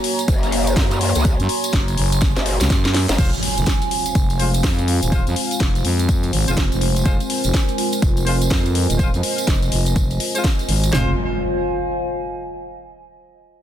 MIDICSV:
0, 0, Header, 1, 8, 480
1, 0, Start_track
1, 0, Tempo, 483871
1, 1239, Time_signature, 4, 2, 24, 8
1, 13514, End_track
2, 0, Start_track
2, 0, Title_t, "Ambient pad"
2, 0, Program_c, 0, 92
2, 0, Note_on_c, 0, 66, 89
2, 0, Note_on_c, 0, 73, 84
2, 0, Note_on_c, 0, 80, 93
2, 0, Note_on_c, 0, 82, 85
2, 165, Note_on_c, 0, 84, 89
2, 286, Note_off_c, 0, 82, 0
2, 3158, Note_off_c, 0, 73, 0
2, 3159, Note_off_c, 0, 66, 0
2, 3160, Note_on_c, 0, 65, 94
2, 3319, Note_on_c, 0, 72, 84
2, 3555, Note_on_c, 0, 77, 71
2, 4331, Note_off_c, 0, 84, 0
2, 8041, Note_on_c, 0, 75, 70
2, 8176, Note_off_c, 0, 77, 0
2, 10828, Note_off_c, 0, 65, 0
2, 10838, Note_off_c, 0, 80, 0
2, 10839, Note_off_c, 0, 72, 0
2, 10839, Note_off_c, 0, 75, 0
2, 10840, Note_on_c, 0, 65, 80
2, 10927, Note_on_c, 0, 72, 82
2, 11006, Note_on_c, 0, 77, 79
2, 11062, Note_on_c, 0, 80, 77
2, 12719, Note_off_c, 0, 72, 0
2, 12720, Note_off_c, 0, 65, 0
2, 12720, Note_off_c, 0, 77, 0
2, 12720, Note_off_c, 0, 80, 0
2, 13514, End_track
3, 0, Start_track
3, 0, Title_t, "Analog synth pad"
3, 0, Program_c, 1, 89
3, 0, Note_on_c, 1, 58, 84
3, 0, Note_on_c, 1, 66, 76
3, 0, Note_on_c, 1, 73, 74
3, 0, Note_on_c, 1, 82, 92
3, 3119, Note_off_c, 1, 58, 0
3, 3119, Note_off_c, 1, 66, 0
3, 3119, Note_off_c, 1, 73, 0
3, 3119, Note_off_c, 1, 82, 0
3, 3158, Note_on_c, 1, 56, 80
3, 3158, Note_on_c, 1, 60, 75
3, 3158, Note_on_c, 1, 65, 70
3, 3158, Note_on_c, 1, 72, 85
3, 6960, Note_off_c, 1, 72, 0
3, 6998, Note_on_c, 1, 70, 90
3, 10799, Note_off_c, 1, 56, 0
3, 10799, Note_off_c, 1, 60, 0
3, 10799, Note_off_c, 1, 65, 0
3, 10800, Note_off_c, 1, 70, 0
3, 13514, End_track
4, 0, Start_track
4, 0, Title_t, "Horn section"
4, 0, Program_c, 2, 61
4, 3159, Note_on_c, 2, 56, 74
4, 3159, Note_on_c, 2, 65, 70
4, 3159, Note_on_c, 2, 72, 84
4, 3264, Note_off_c, 2, 56, 0
4, 3264, Note_off_c, 2, 65, 0
4, 3264, Note_off_c, 2, 72, 0
4, 4358, Note_on_c, 2, 56, 76
4, 4359, Note_on_c, 2, 65, 68
4, 4359, Note_on_c, 2, 72, 82
4, 4464, Note_off_c, 2, 56, 0
4, 4464, Note_off_c, 2, 65, 0
4, 4464, Note_off_c, 2, 72, 0
4, 5079, Note_on_c, 2, 56, 74
4, 5079, Note_on_c, 2, 65, 68
4, 5079, Note_on_c, 2, 72, 80
4, 5184, Note_off_c, 2, 56, 0
4, 5184, Note_off_c, 2, 65, 0
4, 5184, Note_off_c, 2, 72, 0
4, 6426, Note_on_c, 2, 56, 83
4, 6426, Note_on_c, 2, 65, 72
4, 6426, Note_on_c, 2, 72, 88
4, 6492, Note_off_c, 2, 56, 0
4, 6493, Note_off_c, 2, 65, 0
4, 6493, Note_off_c, 2, 72, 0
4, 6999, Note_on_c, 2, 56, 82
4, 6999, Note_on_c, 2, 65, 73
4, 6999, Note_on_c, 2, 72, 86
4, 7104, Note_off_c, 2, 56, 0
4, 7104, Note_off_c, 2, 65, 0
4, 7104, Note_off_c, 2, 72, 0
4, 8198, Note_on_c, 2, 56, 78
4, 8198, Note_on_c, 2, 65, 70
4, 8199, Note_on_c, 2, 72, 82
4, 8304, Note_off_c, 2, 56, 0
4, 8304, Note_off_c, 2, 65, 0
4, 8304, Note_off_c, 2, 72, 0
4, 8919, Note_on_c, 2, 56, 72
4, 8919, Note_on_c, 2, 65, 69
4, 8919, Note_on_c, 2, 72, 80
4, 9024, Note_off_c, 2, 56, 0
4, 9024, Note_off_c, 2, 65, 0
4, 9024, Note_off_c, 2, 72, 0
4, 10267, Note_on_c, 2, 56, 76
4, 10267, Note_on_c, 2, 65, 71
4, 10267, Note_on_c, 2, 72, 83
4, 10380, Note_off_c, 2, 56, 0
4, 10380, Note_off_c, 2, 65, 0
4, 10380, Note_off_c, 2, 72, 0
4, 10839, Note_on_c, 2, 56, 82
4, 10839, Note_on_c, 2, 65, 78
4, 10839, Note_on_c, 2, 72, 88
4, 11028, Note_off_c, 2, 56, 0
4, 11028, Note_off_c, 2, 65, 0
4, 11028, Note_off_c, 2, 72, 0
4, 13514, End_track
5, 0, Start_track
5, 0, Title_t, "Wobble bass"
5, 0, Program_c, 3, 39
5, 279, Note_on_c, 3, 30, 97
5, 744, Note_off_c, 3, 30, 0
5, 758, Note_on_c, 3, 42, 97
5, 1123, Note_off_c, 3, 42, 0
5, 1146, Note_on_c, 3, 37, 97
5, 1363, Note_off_c, 3, 37, 0
5, 2347, Note_on_c, 3, 30, 100
5, 2563, Note_off_c, 3, 30, 0
5, 3066, Note_on_c, 3, 30, 97
5, 3144, Note_off_c, 3, 30, 0
5, 13514, End_track
6, 0, Start_track
6, 0, Title_t, "FM bass"
6, 0, Program_c, 4, 39
6, 1386, Note_on_c, 4, 42, 101
6, 1464, Note_off_c, 4, 42, 0
6, 1719, Note_on_c, 4, 30, 99
6, 1944, Note_off_c, 4, 30, 0
6, 1959, Note_on_c, 4, 30, 96
6, 2323, Note_off_c, 4, 30, 0
6, 2587, Note_on_c, 4, 37, 104
6, 2664, Note_off_c, 4, 37, 0
6, 2679, Note_on_c, 4, 42, 98
6, 3043, Note_off_c, 4, 42, 0
6, 3158, Note_on_c, 4, 29, 93
6, 3283, Note_off_c, 4, 29, 0
6, 3546, Note_on_c, 4, 29, 100
6, 3624, Note_off_c, 4, 29, 0
6, 4118, Note_on_c, 4, 29, 91
6, 4584, Note_off_c, 4, 29, 0
6, 4598, Note_on_c, 4, 41, 96
6, 4963, Note_off_c, 4, 41, 0
6, 4986, Note_on_c, 4, 27, 94
6, 5203, Note_off_c, 4, 27, 0
6, 5226, Note_on_c, 4, 41, 96
6, 5304, Note_off_c, 4, 41, 0
6, 5558, Note_on_c, 4, 29, 91
6, 5784, Note_off_c, 4, 29, 0
6, 5799, Note_on_c, 4, 41, 91
6, 6264, Note_off_c, 4, 41, 0
6, 6278, Note_on_c, 4, 32, 95
6, 6403, Note_off_c, 4, 32, 0
6, 6428, Note_on_c, 4, 29, 100
6, 6643, Note_off_c, 4, 29, 0
6, 6667, Note_on_c, 4, 29, 97
6, 6984, Note_off_c, 4, 29, 0
6, 6999, Note_on_c, 4, 29, 97
6, 7123, Note_off_c, 4, 29, 0
6, 7386, Note_on_c, 4, 29, 98
6, 7464, Note_off_c, 4, 29, 0
6, 7959, Note_on_c, 4, 29, 96
6, 8424, Note_off_c, 4, 29, 0
6, 8439, Note_on_c, 4, 41, 96
6, 8803, Note_off_c, 4, 41, 0
6, 8826, Note_on_c, 4, 27, 93
6, 9042, Note_off_c, 4, 27, 0
6, 9066, Note_on_c, 4, 41, 98
6, 9144, Note_off_c, 4, 41, 0
6, 9399, Note_on_c, 4, 29, 90
6, 9624, Note_off_c, 4, 29, 0
6, 9640, Note_on_c, 4, 29, 97
6, 10105, Note_off_c, 4, 29, 0
6, 10599, Note_on_c, 4, 32, 100
6, 10824, Note_off_c, 4, 32, 0
6, 10840, Note_on_c, 4, 29, 91
6, 11063, Note_off_c, 4, 29, 0
6, 13514, End_track
7, 0, Start_track
7, 0, Title_t, "Impact"
7, 0, Program_c, 5, 103
7, 3159, Note_on_c, 5, 60, 74
7, 5079, Note_off_c, 5, 60, 0
7, 10839, Note_on_c, 5, 60, 67
7, 12759, Note_off_c, 5, 60, 0
7, 13514, End_track
8, 0, Start_track
8, 0, Title_t, "Drums"
8, 39, Note_on_c, 9, 46, 103
8, 138, Note_off_c, 9, 46, 0
8, 186, Note_on_c, 9, 42, 53
8, 188, Note_on_c, 9, 54, 78
8, 277, Note_off_c, 9, 54, 0
8, 277, Note_on_c, 9, 54, 68
8, 279, Note_on_c, 9, 36, 118
8, 280, Note_off_c, 9, 42, 0
8, 280, Note_on_c, 9, 42, 71
8, 376, Note_off_c, 9, 54, 0
8, 378, Note_off_c, 9, 36, 0
8, 379, Note_off_c, 9, 42, 0
8, 427, Note_on_c, 9, 42, 40
8, 435, Note_on_c, 9, 54, 37
8, 519, Note_on_c, 9, 46, 102
8, 527, Note_off_c, 9, 42, 0
8, 534, Note_off_c, 9, 54, 0
8, 618, Note_off_c, 9, 46, 0
8, 666, Note_on_c, 9, 42, 57
8, 666, Note_on_c, 9, 54, 72
8, 759, Note_on_c, 9, 36, 99
8, 759, Note_on_c, 9, 46, 57
8, 763, Note_on_c, 9, 38, 115
8, 765, Note_off_c, 9, 42, 0
8, 765, Note_off_c, 9, 54, 0
8, 767, Note_on_c, 9, 54, 65
8, 858, Note_off_c, 9, 36, 0
8, 858, Note_off_c, 9, 46, 0
8, 862, Note_off_c, 9, 38, 0
8, 866, Note_off_c, 9, 54, 0
8, 901, Note_on_c, 9, 54, 42
8, 906, Note_on_c, 9, 42, 39
8, 1000, Note_off_c, 9, 54, 0
8, 1000, Note_on_c, 9, 46, 102
8, 1006, Note_off_c, 9, 42, 0
8, 1099, Note_off_c, 9, 46, 0
8, 1141, Note_on_c, 9, 54, 80
8, 1148, Note_on_c, 9, 42, 59
8, 1239, Note_on_c, 9, 36, 117
8, 1240, Note_off_c, 9, 42, 0
8, 1240, Note_off_c, 9, 54, 0
8, 1240, Note_on_c, 9, 42, 70
8, 1241, Note_on_c, 9, 54, 69
8, 1338, Note_off_c, 9, 36, 0
8, 1339, Note_off_c, 9, 42, 0
8, 1340, Note_off_c, 9, 54, 0
8, 1384, Note_on_c, 9, 54, 37
8, 1387, Note_on_c, 9, 42, 42
8, 1479, Note_on_c, 9, 46, 109
8, 1483, Note_off_c, 9, 54, 0
8, 1486, Note_off_c, 9, 42, 0
8, 1578, Note_off_c, 9, 46, 0
8, 1623, Note_on_c, 9, 54, 80
8, 1627, Note_on_c, 9, 42, 56
8, 1719, Note_off_c, 9, 42, 0
8, 1719, Note_off_c, 9, 54, 0
8, 1719, Note_on_c, 9, 36, 106
8, 1719, Note_on_c, 9, 42, 70
8, 1719, Note_on_c, 9, 54, 58
8, 1722, Note_on_c, 9, 38, 119
8, 1818, Note_off_c, 9, 36, 0
8, 1818, Note_off_c, 9, 42, 0
8, 1818, Note_off_c, 9, 54, 0
8, 1821, Note_off_c, 9, 38, 0
8, 1866, Note_on_c, 9, 42, 39
8, 1866, Note_on_c, 9, 54, 39
8, 1959, Note_on_c, 9, 46, 98
8, 1965, Note_off_c, 9, 42, 0
8, 1965, Note_off_c, 9, 54, 0
8, 2058, Note_off_c, 9, 46, 0
8, 2106, Note_on_c, 9, 42, 55
8, 2107, Note_on_c, 9, 54, 77
8, 2189, Note_off_c, 9, 54, 0
8, 2189, Note_on_c, 9, 54, 64
8, 2198, Note_off_c, 9, 42, 0
8, 2198, Note_on_c, 9, 38, 64
8, 2198, Note_on_c, 9, 42, 73
8, 2199, Note_on_c, 9, 36, 124
8, 2289, Note_off_c, 9, 54, 0
8, 2298, Note_off_c, 9, 36, 0
8, 2298, Note_off_c, 9, 38, 0
8, 2298, Note_off_c, 9, 42, 0
8, 2344, Note_on_c, 9, 54, 36
8, 2346, Note_on_c, 9, 38, 57
8, 2346, Note_on_c, 9, 42, 39
8, 2438, Note_on_c, 9, 46, 103
8, 2443, Note_off_c, 9, 54, 0
8, 2445, Note_off_c, 9, 38, 0
8, 2445, Note_off_c, 9, 42, 0
8, 2537, Note_off_c, 9, 46, 0
8, 2582, Note_on_c, 9, 54, 80
8, 2587, Note_on_c, 9, 38, 71
8, 2587, Note_on_c, 9, 42, 57
8, 2679, Note_off_c, 9, 38, 0
8, 2679, Note_off_c, 9, 42, 0
8, 2679, Note_on_c, 9, 36, 105
8, 2679, Note_on_c, 9, 38, 91
8, 2679, Note_on_c, 9, 42, 73
8, 2682, Note_off_c, 9, 54, 0
8, 2684, Note_on_c, 9, 54, 62
8, 2778, Note_off_c, 9, 36, 0
8, 2779, Note_off_c, 9, 38, 0
8, 2779, Note_off_c, 9, 42, 0
8, 2783, Note_off_c, 9, 54, 0
8, 2823, Note_on_c, 9, 54, 39
8, 2827, Note_on_c, 9, 38, 82
8, 2827, Note_on_c, 9, 42, 41
8, 2920, Note_off_c, 9, 38, 0
8, 2920, Note_on_c, 9, 38, 105
8, 2920, Note_on_c, 9, 46, 104
8, 2922, Note_off_c, 9, 54, 0
8, 2926, Note_off_c, 9, 42, 0
8, 3019, Note_off_c, 9, 38, 0
8, 3019, Note_off_c, 9, 46, 0
8, 3066, Note_on_c, 9, 54, 78
8, 3067, Note_on_c, 9, 38, 94
8, 3067, Note_on_c, 9, 42, 60
8, 3156, Note_off_c, 9, 54, 0
8, 3156, Note_on_c, 9, 54, 68
8, 3158, Note_on_c, 9, 36, 118
8, 3159, Note_off_c, 9, 42, 0
8, 3159, Note_on_c, 9, 42, 69
8, 3159, Note_on_c, 9, 49, 101
8, 3167, Note_off_c, 9, 38, 0
8, 3255, Note_off_c, 9, 54, 0
8, 3258, Note_off_c, 9, 36, 0
8, 3258, Note_off_c, 9, 42, 0
8, 3258, Note_off_c, 9, 49, 0
8, 3307, Note_on_c, 9, 42, 37
8, 3309, Note_on_c, 9, 54, 40
8, 3399, Note_on_c, 9, 46, 108
8, 3406, Note_off_c, 9, 42, 0
8, 3408, Note_off_c, 9, 54, 0
8, 3498, Note_off_c, 9, 46, 0
8, 3547, Note_on_c, 9, 42, 54
8, 3550, Note_on_c, 9, 54, 75
8, 3632, Note_off_c, 9, 54, 0
8, 3632, Note_on_c, 9, 54, 66
8, 3638, Note_on_c, 9, 36, 103
8, 3640, Note_off_c, 9, 42, 0
8, 3640, Note_on_c, 9, 42, 63
8, 3643, Note_on_c, 9, 38, 117
8, 3732, Note_off_c, 9, 54, 0
8, 3738, Note_off_c, 9, 36, 0
8, 3739, Note_off_c, 9, 42, 0
8, 3742, Note_off_c, 9, 38, 0
8, 3785, Note_on_c, 9, 54, 39
8, 3788, Note_on_c, 9, 42, 38
8, 3880, Note_on_c, 9, 46, 101
8, 3884, Note_off_c, 9, 54, 0
8, 3887, Note_off_c, 9, 42, 0
8, 3979, Note_off_c, 9, 46, 0
8, 4025, Note_on_c, 9, 54, 80
8, 4027, Note_on_c, 9, 42, 54
8, 4116, Note_off_c, 9, 54, 0
8, 4116, Note_on_c, 9, 54, 64
8, 4119, Note_on_c, 9, 36, 120
8, 4120, Note_off_c, 9, 42, 0
8, 4120, Note_on_c, 9, 42, 71
8, 4216, Note_off_c, 9, 54, 0
8, 4218, Note_off_c, 9, 36, 0
8, 4219, Note_off_c, 9, 42, 0
8, 4263, Note_on_c, 9, 54, 42
8, 4267, Note_on_c, 9, 42, 37
8, 4360, Note_on_c, 9, 46, 103
8, 4363, Note_off_c, 9, 54, 0
8, 4366, Note_off_c, 9, 42, 0
8, 4459, Note_off_c, 9, 46, 0
8, 4506, Note_on_c, 9, 54, 75
8, 4507, Note_on_c, 9, 42, 59
8, 4599, Note_on_c, 9, 36, 102
8, 4600, Note_on_c, 9, 46, 56
8, 4603, Note_on_c, 9, 38, 116
8, 4605, Note_off_c, 9, 54, 0
8, 4605, Note_on_c, 9, 54, 65
8, 4606, Note_off_c, 9, 42, 0
8, 4698, Note_off_c, 9, 36, 0
8, 4699, Note_off_c, 9, 46, 0
8, 4703, Note_off_c, 9, 38, 0
8, 4704, Note_off_c, 9, 54, 0
8, 4748, Note_on_c, 9, 42, 37
8, 4752, Note_on_c, 9, 54, 41
8, 4840, Note_on_c, 9, 46, 104
8, 4847, Note_off_c, 9, 42, 0
8, 4852, Note_off_c, 9, 54, 0
8, 4939, Note_off_c, 9, 46, 0
8, 4984, Note_on_c, 9, 54, 85
8, 4987, Note_on_c, 9, 42, 56
8, 5079, Note_off_c, 9, 42, 0
8, 5079, Note_on_c, 9, 36, 119
8, 5079, Note_on_c, 9, 42, 66
8, 5081, Note_off_c, 9, 54, 0
8, 5081, Note_on_c, 9, 54, 69
8, 5178, Note_off_c, 9, 36, 0
8, 5179, Note_off_c, 9, 42, 0
8, 5180, Note_off_c, 9, 54, 0
8, 5227, Note_on_c, 9, 42, 36
8, 5227, Note_on_c, 9, 54, 42
8, 5319, Note_on_c, 9, 46, 112
8, 5326, Note_off_c, 9, 42, 0
8, 5326, Note_off_c, 9, 54, 0
8, 5419, Note_off_c, 9, 46, 0
8, 5467, Note_on_c, 9, 42, 50
8, 5476, Note_on_c, 9, 54, 85
8, 5558, Note_on_c, 9, 36, 113
8, 5560, Note_off_c, 9, 42, 0
8, 5560, Note_on_c, 9, 42, 63
8, 5563, Note_on_c, 9, 38, 120
8, 5575, Note_off_c, 9, 54, 0
8, 5658, Note_off_c, 9, 36, 0
8, 5659, Note_off_c, 9, 42, 0
8, 5662, Note_off_c, 9, 38, 0
8, 5707, Note_on_c, 9, 42, 38
8, 5714, Note_on_c, 9, 54, 42
8, 5799, Note_on_c, 9, 46, 108
8, 5806, Note_off_c, 9, 42, 0
8, 5813, Note_off_c, 9, 54, 0
8, 5899, Note_off_c, 9, 46, 0
8, 5946, Note_on_c, 9, 54, 71
8, 5947, Note_on_c, 9, 42, 51
8, 6037, Note_off_c, 9, 54, 0
8, 6037, Note_on_c, 9, 54, 70
8, 6039, Note_on_c, 9, 36, 122
8, 6040, Note_off_c, 9, 42, 0
8, 6040, Note_on_c, 9, 42, 67
8, 6136, Note_off_c, 9, 54, 0
8, 6138, Note_off_c, 9, 36, 0
8, 6139, Note_off_c, 9, 42, 0
8, 6179, Note_on_c, 9, 54, 39
8, 6187, Note_on_c, 9, 42, 37
8, 6278, Note_off_c, 9, 54, 0
8, 6280, Note_on_c, 9, 46, 105
8, 6286, Note_off_c, 9, 42, 0
8, 6379, Note_off_c, 9, 46, 0
8, 6427, Note_on_c, 9, 42, 56
8, 6429, Note_on_c, 9, 54, 75
8, 6516, Note_off_c, 9, 54, 0
8, 6516, Note_on_c, 9, 54, 72
8, 6519, Note_off_c, 9, 42, 0
8, 6519, Note_on_c, 9, 36, 100
8, 6519, Note_on_c, 9, 42, 65
8, 6523, Note_on_c, 9, 38, 123
8, 6616, Note_off_c, 9, 54, 0
8, 6618, Note_off_c, 9, 36, 0
8, 6618, Note_off_c, 9, 42, 0
8, 6622, Note_off_c, 9, 38, 0
8, 6666, Note_on_c, 9, 42, 38
8, 6668, Note_on_c, 9, 54, 44
8, 6759, Note_on_c, 9, 46, 108
8, 6765, Note_off_c, 9, 42, 0
8, 6767, Note_off_c, 9, 54, 0
8, 6858, Note_off_c, 9, 46, 0
8, 6907, Note_on_c, 9, 42, 55
8, 6908, Note_on_c, 9, 54, 74
8, 6999, Note_off_c, 9, 42, 0
8, 6999, Note_on_c, 9, 36, 122
8, 6999, Note_on_c, 9, 42, 65
8, 7003, Note_off_c, 9, 54, 0
8, 7003, Note_on_c, 9, 54, 66
8, 7098, Note_off_c, 9, 36, 0
8, 7099, Note_off_c, 9, 42, 0
8, 7102, Note_off_c, 9, 54, 0
8, 7146, Note_on_c, 9, 42, 35
8, 7146, Note_on_c, 9, 54, 43
8, 7240, Note_on_c, 9, 46, 113
8, 7245, Note_off_c, 9, 54, 0
8, 7246, Note_off_c, 9, 42, 0
8, 7339, Note_off_c, 9, 46, 0
8, 7379, Note_on_c, 9, 54, 76
8, 7388, Note_on_c, 9, 42, 51
8, 7478, Note_off_c, 9, 54, 0
8, 7479, Note_on_c, 9, 36, 111
8, 7480, Note_off_c, 9, 42, 0
8, 7480, Note_on_c, 9, 42, 60
8, 7483, Note_on_c, 9, 38, 114
8, 7484, Note_on_c, 9, 54, 73
8, 7578, Note_off_c, 9, 36, 0
8, 7579, Note_off_c, 9, 42, 0
8, 7582, Note_off_c, 9, 38, 0
8, 7583, Note_off_c, 9, 54, 0
8, 7622, Note_on_c, 9, 54, 37
8, 7627, Note_on_c, 9, 42, 38
8, 7720, Note_on_c, 9, 46, 105
8, 7721, Note_off_c, 9, 54, 0
8, 7727, Note_off_c, 9, 42, 0
8, 7819, Note_off_c, 9, 46, 0
8, 7862, Note_on_c, 9, 54, 84
8, 7867, Note_on_c, 9, 42, 52
8, 7959, Note_on_c, 9, 36, 127
8, 7960, Note_off_c, 9, 42, 0
8, 7960, Note_off_c, 9, 54, 0
8, 7960, Note_on_c, 9, 42, 65
8, 7960, Note_on_c, 9, 54, 65
8, 8058, Note_off_c, 9, 36, 0
8, 8059, Note_off_c, 9, 42, 0
8, 8059, Note_off_c, 9, 54, 0
8, 8102, Note_on_c, 9, 54, 43
8, 8107, Note_on_c, 9, 42, 36
8, 8199, Note_on_c, 9, 46, 110
8, 8201, Note_off_c, 9, 54, 0
8, 8206, Note_off_c, 9, 42, 0
8, 8299, Note_off_c, 9, 46, 0
8, 8347, Note_on_c, 9, 42, 51
8, 8347, Note_on_c, 9, 54, 84
8, 8435, Note_off_c, 9, 54, 0
8, 8435, Note_on_c, 9, 54, 67
8, 8439, Note_on_c, 9, 36, 106
8, 8440, Note_on_c, 9, 46, 65
8, 8444, Note_on_c, 9, 38, 121
8, 8446, Note_off_c, 9, 42, 0
8, 8534, Note_off_c, 9, 54, 0
8, 8538, Note_off_c, 9, 36, 0
8, 8539, Note_off_c, 9, 46, 0
8, 8543, Note_off_c, 9, 38, 0
8, 8588, Note_on_c, 9, 42, 38
8, 8589, Note_on_c, 9, 54, 39
8, 8681, Note_on_c, 9, 46, 109
8, 8687, Note_off_c, 9, 42, 0
8, 8689, Note_off_c, 9, 54, 0
8, 8780, Note_off_c, 9, 46, 0
8, 8827, Note_on_c, 9, 42, 53
8, 8833, Note_on_c, 9, 54, 81
8, 8919, Note_off_c, 9, 54, 0
8, 8919, Note_on_c, 9, 36, 122
8, 8919, Note_on_c, 9, 54, 67
8, 8920, Note_off_c, 9, 42, 0
8, 8920, Note_on_c, 9, 42, 63
8, 9018, Note_off_c, 9, 36, 0
8, 9018, Note_off_c, 9, 54, 0
8, 9020, Note_off_c, 9, 42, 0
8, 9067, Note_on_c, 9, 42, 35
8, 9076, Note_on_c, 9, 54, 37
8, 9159, Note_on_c, 9, 46, 113
8, 9166, Note_off_c, 9, 42, 0
8, 9175, Note_off_c, 9, 54, 0
8, 9259, Note_off_c, 9, 46, 0
8, 9307, Note_on_c, 9, 42, 52
8, 9312, Note_on_c, 9, 54, 78
8, 9396, Note_off_c, 9, 54, 0
8, 9396, Note_on_c, 9, 54, 70
8, 9399, Note_on_c, 9, 36, 108
8, 9400, Note_off_c, 9, 42, 0
8, 9400, Note_on_c, 9, 42, 62
8, 9404, Note_on_c, 9, 38, 109
8, 9496, Note_off_c, 9, 54, 0
8, 9498, Note_off_c, 9, 36, 0
8, 9499, Note_off_c, 9, 42, 0
8, 9503, Note_off_c, 9, 38, 0
8, 9547, Note_on_c, 9, 42, 37
8, 9548, Note_on_c, 9, 54, 41
8, 9640, Note_on_c, 9, 46, 112
8, 9647, Note_off_c, 9, 42, 0
8, 9647, Note_off_c, 9, 54, 0
8, 9739, Note_off_c, 9, 46, 0
8, 9781, Note_on_c, 9, 54, 76
8, 9787, Note_on_c, 9, 42, 49
8, 9879, Note_off_c, 9, 54, 0
8, 9879, Note_on_c, 9, 36, 127
8, 9879, Note_on_c, 9, 54, 72
8, 9880, Note_off_c, 9, 42, 0
8, 9880, Note_on_c, 9, 42, 63
8, 9978, Note_off_c, 9, 36, 0
8, 9978, Note_off_c, 9, 54, 0
8, 9979, Note_off_c, 9, 42, 0
8, 10022, Note_on_c, 9, 54, 37
8, 10027, Note_on_c, 9, 42, 33
8, 10120, Note_on_c, 9, 46, 107
8, 10121, Note_off_c, 9, 54, 0
8, 10126, Note_off_c, 9, 42, 0
8, 10219, Note_off_c, 9, 46, 0
8, 10267, Note_on_c, 9, 42, 51
8, 10272, Note_on_c, 9, 54, 85
8, 10358, Note_off_c, 9, 54, 0
8, 10358, Note_on_c, 9, 54, 73
8, 10359, Note_on_c, 9, 36, 104
8, 10360, Note_off_c, 9, 42, 0
8, 10360, Note_on_c, 9, 42, 59
8, 10363, Note_on_c, 9, 38, 114
8, 10457, Note_off_c, 9, 54, 0
8, 10458, Note_off_c, 9, 36, 0
8, 10459, Note_off_c, 9, 42, 0
8, 10462, Note_off_c, 9, 38, 0
8, 10508, Note_on_c, 9, 42, 34
8, 10509, Note_on_c, 9, 54, 37
8, 10600, Note_on_c, 9, 46, 110
8, 10607, Note_off_c, 9, 42, 0
8, 10609, Note_off_c, 9, 54, 0
8, 10699, Note_off_c, 9, 46, 0
8, 10748, Note_on_c, 9, 42, 52
8, 10749, Note_on_c, 9, 54, 81
8, 10839, Note_on_c, 9, 38, 105
8, 10839, Note_on_c, 9, 43, 101
8, 10847, Note_off_c, 9, 42, 0
8, 10848, Note_off_c, 9, 54, 0
8, 10938, Note_off_c, 9, 38, 0
8, 10938, Note_off_c, 9, 43, 0
8, 13514, End_track
0, 0, End_of_file